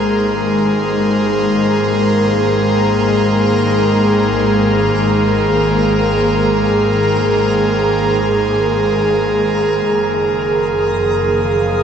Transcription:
Already playing: G#1 D#3 G#3 A#3 G#4 A#4 C5 A#5
9.90 F#1 D#3 A#3 D#6
10.92 F3
11.27 F5

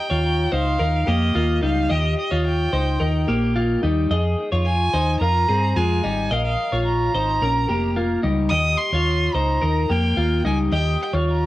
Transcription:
Already playing: G5
0.10 D#2 F4 C#5
0.52 C#2 D#4 C5 F5
0.79 D#2 D#4 A#4
1.07 F2 A#3 G4 D#5
1.35 D#2 A#3 F4
1.62 C#2 G3 D#4 F5
1.90 D#2 G4 D#5
2.19 D#5
2.31 D#2 F4 C#5
2.47 G5
2.73 C#2 D#4 C5
3.00 D#2 D#4 A#4
3.28 A#1 A#3 G4
3.56 A#3 F4
3.83 D#2 G3 D#4
4.10 F2 G#4 D#5
4.52 F2 F4 C#5
4.65 G#5
4.93 D#2 D#4 C5
5.20 F2 F4 A#4 A#5
5.48 G2 C4 G#4
5.76 F2 G#3 F4 G#5
6.04 G#1 G3 D#4
6.31 A#1 A#4 D#5 F5
6.44 F5
6.72 A#1 F4 C#5
6.86 A#5
7.14 G#1 D#4 C5
7.41 A#1 C#4 A#4
7.69 F1 A#3 G4
7.97 A#3 F4
8.23 C#2 G3 D#4
8.50 D#2 G4 D#5 D#6
8.78 C6
8.92 D#2 F4 C#5
9.34 C#2 D#4 C5 A#5
9.61 D#2 D#4 A#4
9.90 F2 A#3 G4 G5
10.17 D#2 A#3 F4
10.44 C#2 G3 D#4 G#5
10.72 D#2 G4 D#5 G5
11.02 G5
11.13 D#2 F4 C#5
11.30 A#5

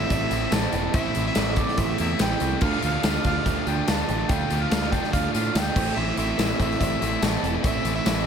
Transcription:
Already playing: A2 E3 A3 C4 E4 A4 E5
0.09 A1 A2 E3 A3 C4 E4 A4 C5 D5, kick, closed hi-hat
0.29 A1 A3 C4 E4, closed hi-hat
0.50 A1 E3 A3 C4 E4 A4 C5 E5 A5, snare, closed hi-hat, tambourine
0.73 E1 A3 C4 E4, closed hi-hat
0.92 A1 A2 E3 A3 C4 E4 A4 C5 E5, kick, closed hi-hat
1.14 A1 A3 C4 E4, closed hi-hat
1.27 E5
1.35 A1 A2 E3 A3 C4 E4 A4 C5 D5, snare, closed hi-hat, tambourine
1.56 A3 C4 E4 D5, kick, closed hi-hat
1.68 snare
1.77 A1 A2 E3 A3 C4 E4 A4 C5 E5, kick, closed hi-hat
1.98 E2 A3 C4 E4 E5, closed hi-hat
2.19 A1 E3 A3 C4 E4 A4 C5 E5 G5, snare, closed hi-hat, tambourine
2.40 C2 A3 C4 E4, closed hi-hat
2.61 D2 D3 A3 D4 F4 A4 D5 F5, kick, crash
2.82 D2 A3 D4 F4 F5, closed hi-hat
3.02 D2 D3 A3 D4 F4 A4 D5 G5, snare, closed hi-hat, tambourine
3.24 D2 A3 D4 F4 F5, kick, closed hi-hat
3.44 D2 D3 A3 D4 F4 A4 D5 E5, kick, closed hi-hat
3.66 D2 A3 D4 F4 G5, closed hi-hat
3.86 D2 D3 A3 D4 F4 A4 D5 F5 A5, snare, closed hi-hat, tambourine
4.09 A1 A3 D4 F4, closed hi-hat
4.28 D2 D3 A3 D4 F4 A4 D5 E5 G5, kick, closed hi-hat
4.50 D2 A3 D4 F4, closed hi-hat
4.61 F5
4.69 D2 D3 A3 D4 F4 A4 D5 F5, snare, closed hi-hat, tambourine
4.83 snare
4.91 A3 D4 F4 G5, kick, closed hi-hat
5.04 snare
5.12 D2 D3 A3 D4 F4 A4 D5 F5, kick, closed hi-hat
5.33 A2 A3 D4 F4 F5, closed hi-hat
5.53 D2 D3 A3 D4 F4 A4 D5 F5 G5, snare, closed hi-hat, tambourine
5.75 A1 A2 E3 A3 C4 E4 A4 C5 E5, kick, crash
5.96 A1 A2 E3 A3 C4 E4 E5
6.17 A1 A3 C4 E4 E5, closed hi-hat
6.37 A1 A2 E3 A3 C4 E4 A4 C5 D5, snare, closed hi-hat, tambourine
6.50 snare
6.58 A1 A3 C4 E4 E5, kick, closed hi-hat
6.71 snare
6.79 A1 A2 E3 A3 C4 E4 A4 C5 D5, kick, closed hi-hat
7.01 A1 A3 C4 E4, closed hi-hat
7.21 A1 E3 A3 C4 E4 A4 C5 E5 A5, snare, closed hi-hat, tambourine
7.43 E1 A3 C4 E4, closed hi-hat
7.63 A1 A2 E3 A3 C4 E4 A4 C5 D5 E5, kick, closed hi-hat
7.84 A1 A3 C4 E4, closed hi-hat
7.95 E5
8.04 A1 A2 E3 A3 C4 E4 A4 C5 E5, snare, closed hi-hat, tambourine

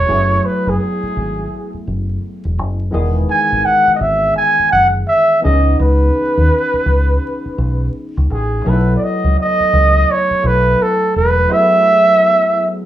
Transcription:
Already playing: C#5
0.05 F#1 F#3 G#3 B3 E4 G#4
0.13 A3
0.46 B4
0.67 F#1 G#4
1.03 muted fingered electric bass stroke
1.17 G#1
1.74 muted fingered electric bass stroke
1.87 F#1
2.45 E1
2.59 F#1
2.91 E1 D#3 E3 G#3 B3 G#4
3.30 G#5
3.52 G#1
3.65 F#5
3.87 muted fingered electric bass stroke
3.95 D#5
4.01 G#1 E5
4.37 G#5
4.59 muted fingered electric bass stroke
4.72 F#1 F#5
5.07 E5
5.41 E3 B3 C#4 D#4 G#4 D#5
5.45 C#2
5.79 C#2 B4
6.37 D#2
6.73 muted fingered electric bass stroke
6.86 C#2
7.46 muted fingered electric bass stroke
7.58 B1
8.17 C#2
8.31 A1 G#4
8.64 B1 F#3 A3 B3 D#4 A4
8.69 E4 B4
8.96 D5
9.04 D#5
9.24 C#2
9.40 D#5
9.60 muted fingered electric bass stroke
9.73 C#2
10.11 C#5
10.31 muted fingered electric bass stroke
10.42 B1 F#3 A3 B3 E4 A4
10.47 B4
10.82 A4
11.16 E1 B4
11.48 F#3 A3 B3 E4 G#4 E5

